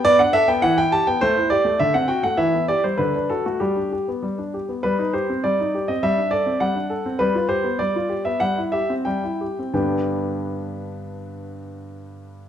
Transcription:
\new Staff \with { instrumentName = "Grand piano" } { \time 2/4 \key g \major \tempo 4 = 99 << { d''16 fis''16 e''16 g''16 fis''16 g''16 a''16 g''16 | c''8 d''8 e''16 fis''16 g''16 fis''16 | e''8 d''16 c''16 b'8 a'16 fis'16 | g'4 r4 |
b'8 c''8 d''8. ees''16 | e''8 d''8 fis''4 | b'8 c''8 d''8. e''16 | fis''8 e''8 g''4 |
<g, d b d' g' b' g''>2~ | <g, d b d' g' b' g''>2 | } \\ { b16 d'16 a'16 b16 e16 e'16 g'16 b16 | a16 e'16 g'16 a16 d16 c'16 fis'16 a16 | e16 b16 g'16 g16 d16 d'16 fis'16 a16 | g16 d'16 g'16 b16 g16 d'16 g'16 b16 |
g16 ees'16 g'16 c'16 g16 ees'16 g'16 c'16 | g16 d'16 a'16 c'16 g16 d'16 a'16 c'16 | g16 f'16 g'16 b16 g16 f'16 g'16 b16 | g16 e'16 g'16 c'16 g16 e'16 g'16 c'16 |
r2 | r2 | } >> }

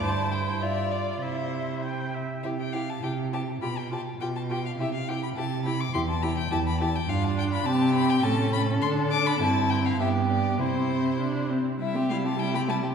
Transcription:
<<
  \new Staff \with { instrumentName = "Violin" } { \time 2/4 \key c \major \tempo 4 = 102 a''8 g''8 e''8 d''8 | c''4. r8 | e''16 g''16 f''16 a''16 g''8 a''8 | b''16 g''16 a''8 g''16 a''16 g''16 f''16 |
e''16 f''16 g''16 b''16 a''8 b''16 d'''16 | c'''16 a''16 b''16 g''16 a''16 b''16 a''16 g''16 | f''16 a''16 g''16 b''16 a''8 b''16 g''16 | a''8 b''8 c'''8 d'''16 b''16 |
a''8 g''16 f''16 e''8 d''8 | c''4. r8 | e''8 f''16 a''16 g''16 b''16 a''8 | }
  \new Staff \with { instrumentName = "Violin" } { \time 2/4 \key c \major e'4 f'4 | e'4. r8 | g'8 g'8 g'8 g'8 | g'8 g'8 g'8 g'8 |
g'8 g'8 g'8 g'8 | g'8 g'8 g'8 g'8 | f'4 g'4 | a'2 |
e'4 g'4 | e'4.~ e'16 r16 | e'16 g'16 e'16 g'16 e'16 g'16 e'16 g'16 | }
  \new Staff \with { instrumentName = "Viola" } { \time 2/4 \key c \major c''4 d''4 | e''4 g''8 e''8 | e'8 e'8 e'8 e'8 | f'8 f'8 f'8 f'8 |
e'8 e'8 e'8 e'8 | e'8 e'8 e'8 e'8 | d'4 c'4 | cis'4 d'4 |
c'4 b4 | c'4 d'8 c'8 | g16 c'16 g16 c'16 g16 c'16 g16 c'16 | }
  \new Staff \with { instrumentName = "Cello" } { \clef bass \time 2/4 \key c \major g,2 | c4. r8 | c4 c4 | b,4 b,4 |
c4 c4 | e,4 e,4 | g,4 c4 | a,4 d4 |
g,4 g,4 | c4. r8 | c2 | }
>>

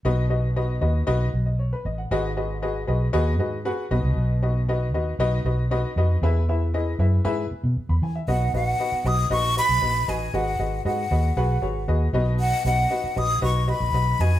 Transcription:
<<
  \new Staff \with { instrumentName = "Flute" } { \time 4/4 \key b \major \tempo 4 = 117 r1 | r1 | r1 | r1 |
fis''8 fis''4 dis'''8 cis'''8 b''4 gis''8 | fis''4 fis''2~ fis''8 r8 | fis''8 fis''4 dis'''8 cis'''8 b''4 gis''8 | }
  \new Staff \with { instrumentName = "Upright piano" } { \time 4/4 \key b \major << { r2 r8. dis''16 cis''16 b'16 dis''16 fis''16~ | fis''16 r2. r8. | r1 | r2. r16 b''16 gis''16 e''16~ |
e''16 r2. r8. | r1 | r1 | } \\ { <dis' fis' b' dis''>8 <dis' fis' b' dis''>8 <dis' fis' b' dis''>8 <dis' fis' b' dis''>8 <dis' fis' b' dis''>8 r4. | <fis' gis' b' dis''>8 <fis' gis' b' dis''>8 <fis' gis' b' dis''>8 <fis' gis' b' dis''>8 <fis' gis' b' dis''>8 <fis' gis' b' dis''>8 <fis' gis' b' fis''>8 <dis' fis' b' dis''>8~ | <dis' fis' b' dis''>8 <dis' fis' b' dis''>8 <dis' fis' b' dis''>8 <dis' fis' b' dis''>8 <dis' fis' b' dis''>8 <dis' fis' b' dis''>8 <dis' fis' b' dis''>8 <dis' fis' b' dis''>8 | <e' gis' b' e''>8 <e' gis' b' e''>8 <e' gis' b' dis''>8 <e' gis' b' e''>8 <e' gis' b' e''>8 r4. |
<dis' fis' b' dis''>8 <dis' fis' b' dis''>8 <dis' fis' b' dis''>8 <dis' fis' b' dis''>8 <dis' fis' b' dis''>8 <dis' fis' b' dis''>8 <dis' fis' b' dis''>8 <dis' fis' b' dis''>8 | <fis' gis' b' dis''>8 <fis' gis' b' dis''>8 <fis' gis' b' dis''>8 <fis' gis' b' dis''>8 <fis' gis' b' fis''>8 <fis' gis' b' cis''>8 <fis' gis' b' dis''>8 <dis' fis' b' dis''>8~ | <dis' fis' b' dis''>8 <dis' fis' b' dis''>8 <dis' fis' b' dis''>8 <dis' fis' b' dis''>8 <dis' fis' b' dis''>8 <dis' fis' b' dis''>8 <dis' fis' b' dis''>8 <dis' fis' b' dis''>8 | } >> }
  \new Staff \with { instrumentName = "Upright piano" } { \clef bass \time 4/4 \key b \major b,4. r2 r8 | gis,4. r2 b,8~ | b,4 r2. | e4. r2 r8 |
b,4. r2 r8 | gis,4. r2 b,8~ | b,4 r2. | }
  \new Staff \with { instrumentName = "Fingered electric bass" } { \clef bass \time 4/4 \key b \major b,,4. dis,8 b,,8 b,,4 a,,8 | gis,,4. b,,8 dis,8 gis,8. r16 b,,16 c,16 | b,,4. dis,8 b,,8 b,,4 eis,8 | e,4. fis,8 gis,8 r16 b,16 r16 e,16 e8 |
b,,8 ais,,8 r8 b,,8 ais,,8. b,,16 ais,,8 a,,8 | gis,,8 gis,,8 gis,8 dis,8 b,,8 gis,,8 dis,8 b,,8~ | b,,8 b,,8 r8 ais,,8 b,,8. ais,,16 b,,8 eis,8 | }
>>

